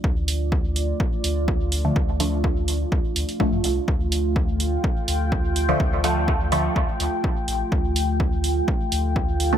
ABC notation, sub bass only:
X:1
M:4/4
L:1/16
Q:1/4=125
K:Dm
V:1 name="Sub bass" clef=bass
D,,6- D,, z3 D,,4- D,, z | D,,6- D,, z D,, z D,, z A,,, G,, C,, z | D,,6- D,, z3 D,,4- D,, z | D,,6- D,, z D,, z D,, z3 A,,, z |
D,,6- D,, z3 D,,4- D,, z |]